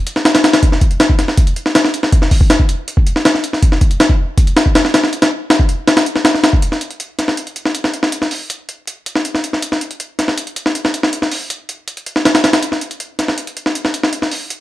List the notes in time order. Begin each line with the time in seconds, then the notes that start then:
0.07 closed hi-hat
0.16 snare
0.25 snare, closed hi-hat
0.35 snare, closed hi-hat
0.44 snare, closed hi-hat
0.53 snare, closed hi-hat
0.63 kick, closed hi-hat
0.72 snare
0.81 kick, closed hi-hat
0.91 closed hi-hat
1.00 snare, closed hi-hat
1.10 kick
1.19 snare, closed hi-hat
1.28 snare
1.37 kick, closed hi-hat
1.47 closed hi-hat
1.56 closed hi-hat
1.66 snare
1.75 snare, closed hi-hat
1.85 snare
1.94 closed hi-hat
2.03 snare
2.12 kick, closed hi-hat
2.22 snare
2.31 kick, open hi-hat
2.41 kick
2.50 snare, closed hi-hat
2.60 kick
2.69 closed hi-hat
2.88 closed hi-hat
2.97 kick
3.07 closed hi-hat
3.16 snare
3.25 snare, closed hi-hat
3.35 snare
3.44 closed hi-hat
3.53 snare
3.62 kick, closed hi-hat
3.72 snare
3.81 kick, closed hi-hat
3.91 closed hi-hat
4.00 snare, closed hi-hat
4.09 kick
4.38 kick, closed hi-hat
4.47 closed hi-hat
4.57 snare, closed hi-hat
4.66 kick
4.75 snare, closed hi-hat
4.85 snare
4.94 snare, closed hi-hat
5.04 snare
5.13 closed hi-hat
5.22 snare, closed hi-hat
5.50 snare, closed hi-hat
5.59 kick
5.69 closed hi-hat
5.88 snare, closed hi-hat
5.97 snare, closed hi-hat
6.06 closed hi-hat
6.16 snare
6.25 snare, closed hi-hat
6.34 snare
6.44 snare, closed hi-hat
6.53 kick
6.62 closed hi-hat
6.72 snare
6.81 closed hi-hat
6.90 closed hi-hat
7.00 closed hi-hat
7.19 snare, closed hi-hat
7.28 snare
7.37 closed hi-hat
7.47 closed hi-hat
7.56 closed hi-hat
7.66 snare
7.75 closed hi-hat
7.84 snare
7.94 closed hi-hat
8.03 snare
8.12 closed hi-hat
8.22 snare
8.31 open hi-hat
8.50 closed hi-hat
8.69 closed hi-hat
8.87 closed hi-hat
9.06 closed hi-hat
9.15 snare
9.25 closed hi-hat
9.35 snare
9.44 closed hi-hat
9.53 snare
9.62 closed hi-hat
9.72 snare
9.81 closed hi-hat
9.91 closed hi-hat
10.00 closed hi-hat
10.19 snare, closed hi-hat
10.28 snare
10.38 closed hi-hat
10.47 closed hi-hat
10.56 closed hi-hat
10.66 snare
10.75 closed hi-hat
10.85 snare
10.94 closed hi-hat
11.03 snare
11.13 closed hi-hat
11.22 snare
11.31 open hi-hat
11.50 closed hi-hat
11.69 closed hi-hat
11.88 closed hi-hat
11.97 closed hi-hat
12.06 closed hi-hat
12.16 snare
12.25 snare, closed hi-hat
12.35 snare, closed hi-hat
12.44 snare, closed hi-hat
12.53 snare, closed hi-hat
12.63 closed hi-hat
12.72 snare
12.81 closed hi-hat
12.91 closed hi-hat
13.00 closed hi-hat
13.19 snare, closed hi-hat
13.28 snare
13.38 closed hi-hat
13.47 closed hi-hat
13.57 closed hi-hat
13.66 snare
13.75 closed hi-hat
13.85 snare
13.94 closed hi-hat
14.03 snare
14.13 closed hi-hat
14.22 snare
14.31 open hi-hat
14.50 closed hi-hat